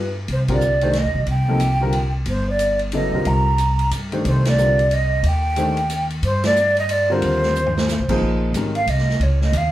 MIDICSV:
0, 0, Header, 1, 5, 480
1, 0, Start_track
1, 0, Tempo, 330396
1, 417, Time_signature, 3, 2, 24, 8
1, 14115, End_track
2, 0, Start_track
2, 0, Title_t, "Flute"
2, 0, Program_c, 0, 73
2, 0, Note_on_c, 0, 71, 85
2, 189, Note_off_c, 0, 71, 0
2, 468, Note_on_c, 0, 72, 70
2, 555, Note_off_c, 0, 72, 0
2, 763, Note_on_c, 0, 74, 74
2, 1417, Note_on_c, 0, 75, 70
2, 1439, Note_off_c, 0, 74, 0
2, 1877, Note_off_c, 0, 75, 0
2, 1891, Note_on_c, 0, 79, 85
2, 3073, Note_off_c, 0, 79, 0
2, 3328, Note_on_c, 0, 72, 70
2, 3590, Note_off_c, 0, 72, 0
2, 3622, Note_on_c, 0, 74, 83
2, 4055, Note_off_c, 0, 74, 0
2, 4270, Note_on_c, 0, 75, 78
2, 4751, Note_on_c, 0, 82, 87
2, 4772, Note_off_c, 0, 75, 0
2, 5703, Note_off_c, 0, 82, 0
2, 6204, Note_on_c, 0, 72, 79
2, 6467, Note_off_c, 0, 72, 0
2, 6500, Note_on_c, 0, 74, 94
2, 7166, Note_on_c, 0, 75, 88
2, 7188, Note_off_c, 0, 74, 0
2, 7631, Note_off_c, 0, 75, 0
2, 7664, Note_on_c, 0, 79, 100
2, 8838, Note_off_c, 0, 79, 0
2, 9077, Note_on_c, 0, 72, 88
2, 9343, Note_off_c, 0, 72, 0
2, 9387, Note_on_c, 0, 74, 99
2, 9817, Note_off_c, 0, 74, 0
2, 9859, Note_on_c, 0, 75, 80
2, 10038, Note_on_c, 0, 74, 84
2, 10060, Note_off_c, 0, 75, 0
2, 10345, Note_on_c, 0, 72, 85
2, 10367, Note_off_c, 0, 74, 0
2, 11768, Note_off_c, 0, 72, 0
2, 12722, Note_on_c, 0, 77, 78
2, 12924, Note_on_c, 0, 75, 66
2, 12946, Note_off_c, 0, 77, 0
2, 13406, Note_on_c, 0, 73, 61
2, 13428, Note_off_c, 0, 75, 0
2, 13688, Note_off_c, 0, 73, 0
2, 13698, Note_on_c, 0, 75, 83
2, 13906, Note_on_c, 0, 77, 70
2, 13928, Note_off_c, 0, 75, 0
2, 14115, Note_off_c, 0, 77, 0
2, 14115, End_track
3, 0, Start_track
3, 0, Title_t, "Grand piano"
3, 0, Program_c, 1, 0
3, 709, Note_on_c, 1, 50, 60
3, 714, Note_on_c, 1, 55, 64
3, 716, Note_on_c, 1, 60, 63
3, 722, Note_on_c, 1, 65, 56
3, 728, Note_on_c, 1, 70, 67
3, 876, Note_off_c, 1, 50, 0
3, 879, Note_off_c, 1, 55, 0
3, 879, Note_off_c, 1, 60, 0
3, 882, Note_off_c, 1, 65, 0
3, 886, Note_off_c, 1, 70, 0
3, 1191, Note_on_c, 1, 51, 68
3, 1198, Note_on_c, 1, 62, 58
3, 1201, Note_on_c, 1, 57, 54
3, 1203, Note_on_c, 1, 67, 59
3, 1209, Note_on_c, 1, 72, 72
3, 1357, Note_off_c, 1, 51, 0
3, 1361, Note_off_c, 1, 62, 0
3, 1362, Note_off_c, 1, 57, 0
3, 1363, Note_off_c, 1, 67, 0
3, 1366, Note_off_c, 1, 72, 0
3, 2155, Note_on_c, 1, 53, 60
3, 2160, Note_on_c, 1, 48, 68
3, 2163, Note_on_c, 1, 58, 58
3, 2168, Note_on_c, 1, 63, 61
3, 2173, Note_on_c, 1, 69, 76
3, 2319, Note_off_c, 1, 53, 0
3, 2321, Note_off_c, 1, 48, 0
3, 2323, Note_off_c, 1, 58, 0
3, 2325, Note_off_c, 1, 63, 0
3, 2328, Note_off_c, 1, 69, 0
3, 2629, Note_on_c, 1, 50, 67
3, 2634, Note_on_c, 1, 55, 55
3, 2639, Note_on_c, 1, 60, 59
3, 2643, Note_on_c, 1, 65, 59
3, 2651, Note_on_c, 1, 70, 75
3, 2796, Note_off_c, 1, 50, 0
3, 2798, Note_off_c, 1, 55, 0
3, 2801, Note_off_c, 1, 60, 0
3, 2803, Note_off_c, 1, 65, 0
3, 2807, Note_off_c, 1, 70, 0
3, 4258, Note_on_c, 1, 49, 63
3, 4261, Note_on_c, 1, 54, 51
3, 4269, Note_on_c, 1, 59, 49
3, 4280, Note_on_c, 1, 64, 51
3, 4281, Note_on_c, 1, 69, 67
3, 4525, Note_off_c, 1, 49, 0
3, 4526, Note_off_c, 1, 54, 0
3, 4530, Note_off_c, 1, 59, 0
3, 4536, Note_off_c, 1, 64, 0
3, 4536, Note_off_c, 1, 69, 0
3, 4556, Note_on_c, 1, 50, 50
3, 4561, Note_on_c, 1, 55, 52
3, 4568, Note_on_c, 1, 60, 52
3, 4570, Note_on_c, 1, 65, 54
3, 4575, Note_on_c, 1, 70, 63
3, 4975, Note_off_c, 1, 50, 0
3, 4978, Note_off_c, 1, 55, 0
3, 4981, Note_off_c, 1, 60, 0
3, 4982, Note_off_c, 1, 65, 0
3, 4985, Note_off_c, 1, 70, 0
3, 5987, Note_on_c, 1, 51, 61
3, 5989, Note_on_c, 1, 57, 60
3, 5998, Note_on_c, 1, 62, 61
3, 6001, Note_on_c, 1, 67, 59
3, 6005, Note_on_c, 1, 72, 66
3, 6616, Note_off_c, 1, 51, 0
3, 6617, Note_off_c, 1, 57, 0
3, 6621, Note_off_c, 1, 62, 0
3, 6623, Note_off_c, 1, 67, 0
3, 6625, Note_off_c, 1, 72, 0
3, 6651, Note_on_c, 1, 50, 54
3, 6655, Note_on_c, 1, 55, 46
3, 6662, Note_on_c, 1, 65, 52
3, 6665, Note_on_c, 1, 60, 49
3, 6672, Note_on_c, 1, 70, 59
3, 6921, Note_off_c, 1, 50, 0
3, 6923, Note_off_c, 1, 55, 0
3, 6926, Note_off_c, 1, 65, 0
3, 6928, Note_off_c, 1, 60, 0
3, 6932, Note_off_c, 1, 70, 0
3, 8087, Note_on_c, 1, 51, 66
3, 8097, Note_on_c, 1, 57, 57
3, 8097, Note_on_c, 1, 62, 56
3, 8097, Note_on_c, 1, 67, 51
3, 8103, Note_on_c, 1, 72, 68
3, 8359, Note_off_c, 1, 51, 0
3, 8364, Note_off_c, 1, 57, 0
3, 8364, Note_off_c, 1, 62, 0
3, 8364, Note_off_c, 1, 67, 0
3, 8367, Note_off_c, 1, 72, 0
3, 10312, Note_on_c, 1, 50, 68
3, 10313, Note_on_c, 1, 55, 62
3, 10316, Note_on_c, 1, 60, 69
3, 10329, Note_on_c, 1, 65, 58
3, 10333, Note_on_c, 1, 70, 77
3, 10938, Note_off_c, 1, 50, 0
3, 10939, Note_off_c, 1, 55, 0
3, 10940, Note_off_c, 1, 60, 0
3, 10946, Note_off_c, 1, 65, 0
3, 10948, Note_off_c, 1, 70, 0
3, 11759, Note_on_c, 1, 53, 76
3, 11759, Note_on_c, 1, 63, 66
3, 11760, Note_on_c, 1, 58, 68
3, 11769, Note_on_c, 1, 68, 71
3, 11775, Note_on_c, 1, 72, 84
3, 12382, Note_off_c, 1, 53, 0
3, 12382, Note_off_c, 1, 58, 0
3, 12382, Note_off_c, 1, 63, 0
3, 12387, Note_off_c, 1, 68, 0
3, 12390, Note_off_c, 1, 72, 0
3, 12429, Note_on_c, 1, 51, 59
3, 12433, Note_on_c, 1, 56, 52
3, 12436, Note_on_c, 1, 61, 45
3, 12443, Note_on_c, 1, 67, 51
3, 12450, Note_on_c, 1, 70, 63
3, 12689, Note_off_c, 1, 51, 0
3, 12692, Note_off_c, 1, 56, 0
3, 12693, Note_off_c, 1, 61, 0
3, 12696, Note_off_c, 1, 67, 0
3, 12700, Note_off_c, 1, 70, 0
3, 14115, End_track
4, 0, Start_track
4, 0, Title_t, "Upright bass"
4, 0, Program_c, 2, 32
4, 0, Note_on_c, 2, 43, 74
4, 357, Note_off_c, 2, 43, 0
4, 410, Note_on_c, 2, 36, 78
4, 1475, Note_off_c, 2, 36, 0
4, 1524, Note_on_c, 2, 39, 58
4, 1667, Note_off_c, 2, 39, 0
4, 1676, Note_on_c, 2, 35, 69
4, 1826, Note_off_c, 2, 35, 0
4, 1835, Note_on_c, 2, 36, 70
4, 3227, Note_off_c, 2, 36, 0
4, 3285, Note_on_c, 2, 31, 86
4, 4490, Note_off_c, 2, 31, 0
4, 4538, Note_on_c, 2, 35, 67
4, 4715, Note_off_c, 2, 35, 0
4, 4727, Note_on_c, 2, 36, 70
4, 5634, Note_off_c, 2, 36, 0
4, 5680, Note_on_c, 2, 43, 66
4, 6134, Note_off_c, 2, 43, 0
4, 6167, Note_on_c, 2, 36, 86
4, 7553, Note_off_c, 2, 36, 0
4, 7599, Note_on_c, 2, 39, 88
4, 8989, Note_off_c, 2, 39, 0
4, 9043, Note_on_c, 2, 43, 83
4, 10430, Note_off_c, 2, 43, 0
4, 10487, Note_on_c, 2, 39, 83
4, 11553, Note_off_c, 2, 39, 0
4, 11609, Note_on_c, 2, 36, 55
4, 11752, Note_off_c, 2, 36, 0
4, 11761, Note_on_c, 2, 33, 65
4, 11916, Note_off_c, 2, 33, 0
4, 11931, Note_on_c, 2, 34, 72
4, 12379, Note_off_c, 2, 34, 0
4, 12388, Note_on_c, 2, 32, 79
4, 12867, Note_off_c, 2, 32, 0
4, 12879, Note_on_c, 2, 36, 81
4, 13352, Note_off_c, 2, 36, 0
4, 13360, Note_on_c, 2, 37, 78
4, 13828, Note_off_c, 2, 37, 0
4, 13836, Note_on_c, 2, 39, 87
4, 14115, Note_off_c, 2, 39, 0
4, 14115, End_track
5, 0, Start_track
5, 0, Title_t, "Drums"
5, 409, Note_on_c, 9, 51, 61
5, 554, Note_off_c, 9, 51, 0
5, 702, Note_on_c, 9, 51, 67
5, 704, Note_on_c, 9, 36, 81
5, 847, Note_off_c, 9, 51, 0
5, 850, Note_off_c, 9, 36, 0
5, 883, Note_on_c, 9, 44, 49
5, 1028, Note_off_c, 9, 44, 0
5, 1181, Note_on_c, 9, 51, 48
5, 1326, Note_off_c, 9, 51, 0
5, 1356, Note_on_c, 9, 51, 57
5, 1358, Note_on_c, 9, 38, 42
5, 1502, Note_off_c, 9, 51, 0
5, 1503, Note_off_c, 9, 38, 0
5, 1664, Note_on_c, 9, 36, 44
5, 1809, Note_off_c, 9, 36, 0
5, 1838, Note_on_c, 9, 51, 57
5, 1983, Note_off_c, 9, 51, 0
5, 2319, Note_on_c, 9, 44, 48
5, 2319, Note_on_c, 9, 51, 64
5, 2464, Note_off_c, 9, 44, 0
5, 2464, Note_off_c, 9, 51, 0
5, 2798, Note_on_c, 9, 51, 65
5, 2943, Note_off_c, 9, 51, 0
5, 3277, Note_on_c, 9, 51, 61
5, 3422, Note_off_c, 9, 51, 0
5, 3762, Note_on_c, 9, 44, 54
5, 3762, Note_on_c, 9, 51, 65
5, 3908, Note_off_c, 9, 44, 0
5, 3908, Note_off_c, 9, 51, 0
5, 4057, Note_on_c, 9, 51, 45
5, 4202, Note_off_c, 9, 51, 0
5, 4239, Note_on_c, 9, 51, 64
5, 4385, Note_off_c, 9, 51, 0
5, 4723, Note_on_c, 9, 51, 62
5, 4868, Note_off_c, 9, 51, 0
5, 5203, Note_on_c, 9, 44, 53
5, 5203, Note_on_c, 9, 51, 59
5, 5348, Note_off_c, 9, 44, 0
5, 5348, Note_off_c, 9, 51, 0
5, 5505, Note_on_c, 9, 51, 47
5, 5650, Note_off_c, 9, 51, 0
5, 5685, Note_on_c, 9, 44, 57
5, 5685, Note_on_c, 9, 51, 67
5, 5831, Note_off_c, 9, 44, 0
5, 5831, Note_off_c, 9, 51, 0
5, 5986, Note_on_c, 9, 51, 43
5, 6132, Note_off_c, 9, 51, 0
5, 6174, Note_on_c, 9, 51, 64
5, 6319, Note_off_c, 9, 51, 0
5, 6470, Note_on_c, 9, 51, 66
5, 6471, Note_on_c, 9, 38, 70
5, 6615, Note_off_c, 9, 51, 0
5, 6617, Note_off_c, 9, 38, 0
5, 6652, Note_on_c, 9, 44, 51
5, 6798, Note_off_c, 9, 44, 0
5, 6959, Note_on_c, 9, 51, 46
5, 7104, Note_off_c, 9, 51, 0
5, 7133, Note_on_c, 9, 51, 61
5, 7279, Note_off_c, 9, 51, 0
5, 7606, Note_on_c, 9, 51, 65
5, 7751, Note_off_c, 9, 51, 0
5, 8080, Note_on_c, 9, 44, 54
5, 8080, Note_on_c, 9, 51, 58
5, 8226, Note_off_c, 9, 44, 0
5, 8226, Note_off_c, 9, 51, 0
5, 8380, Note_on_c, 9, 51, 48
5, 8526, Note_off_c, 9, 51, 0
5, 8567, Note_on_c, 9, 44, 59
5, 8567, Note_on_c, 9, 51, 69
5, 8712, Note_off_c, 9, 44, 0
5, 8712, Note_off_c, 9, 51, 0
5, 8869, Note_on_c, 9, 51, 44
5, 9014, Note_off_c, 9, 51, 0
5, 9048, Note_on_c, 9, 51, 63
5, 9193, Note_off_c, 9, 51, 0
5, 9350, Note_on_c, 9, 51, 63
5, 9352, Note_on_c, 9, 38, 78
5, 9496, Note_off_c, 9, 51, 0
5, 9497, Note_off_c, 9, 38, 0
5, 9531, Note_on_c, 9, 44, 66
5, 9676, Note_off_c, 9, 44, 0
5, 9830, Note_on_c, 9, 51, 53
5, 9975, Note_off_c, 9, 51, 0
5, 10009, Note_on_c, 9, 51, 74
5, 10154, Note_off_c, 9, 51, 0
5, 10489, Note_on_c, 9, 51, 59
5, 10634, Note_off_c, 9, 51, 0
5, 10792, Note_on_c, 9, 38, 36
5, 10937, Note_off_c, 9, 38, 0
5, 10974, Note_on_c, 9, 44, 59
5, 11120, Note_off_c, 9, 44, 0
5, 11135, Note_on_c, 9, 43, 57
5, 11280, Note_off_c, 9, 43, 0
5, 11295, Note_on_c, 9, 38, 85
5, 11441, Note_off_c, 9, 38, 0
5, 11455, Note_on_c, 9, 44, 65
5, 11457, Note_on_c, 9, 38, 66
5, 11600, Note_off_c, 9, 44, 0
5, 11602, Note_off_c, 9, 38, 0
5, 11748, Note_on_c, 9, 36, 71
5, 11753, Note_on_c, 9, 49, 69
5, 11893, Note_off_c, 9, 36, 0
5, 11898, Note_off_c, 9, 49, 0
5, 12409, Note_on_c, 9, 44, 59
5, 12409, Note_on_c, 9, 51, 58
5, 12555, Note_off_c, 9, 44, 0
5, 12555, Note_off_c, 9, 51, 0
5, 12712, Note_on_c, 9, 51, 46
5, 12858, Note_off_c, 9, 51, 0
5, 12892, Note_on_c, 9, 51, 66
5, 13038, Note_off_c, 9, 51, 0
5, 13050, Note_on_c, 9, 38, 28
5, 13195, Note_off_c, 9, 38, 0
5, 13214, Note_on_c, 9, 38, 39
5, 13359, Note_off_c, 9, 38, 0
5, 13376, Note_on_c, 9, 51, 58
5, 13522, Note_off_c, 9, 51, 0
5, 13675, Note_on_c, 9, 38, 42
5, 13821, Note_off_c, 9, 38, 0
5, 13848, Note_on_c, 9, 44, 52
5, 13848, Note_on_c, 9, 51, 68
5, 13994, Note_off_c, 9, 44, 0
5, 13994, Note_off_c, 9, 51, 0
5, 14115, End_track
0, 0, End_of_file